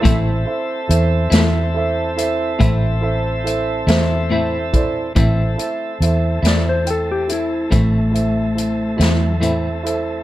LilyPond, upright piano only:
\new Staff \with { instrumentName = "Upright piano" } { \time 12/8 \key a \minor \tempo 4. = 47 <e' a' c'' e''>8 <e' a' c'' e''>8 <e' a' c'' e''>8 <e' a' c'' e''>8 <e' a' c'' e''>8 <e' a' c'' e''>8 <e' a' c'' e''>8 <e' a' c'' e''>8 <e' a' c'' e''>8 <e' a' c'' e''>8 <e' a' c'' e''>8 <e' a' c'' d''>8 | <e' a' c'' e''>8 <e' a' c'' e''>8 <e' a' c'' e''>8 <e' a' c'' e''>8 <e' a' c'' g''>8 <e' a' c'' e''>8 <e' a' c'' e''>8 <e' a' c'' e''>8 <e' a' c'' e''>8 <e' a' c'' e''>8 <e' a' c'' e''>8 <e' a' c'' e''>8 | }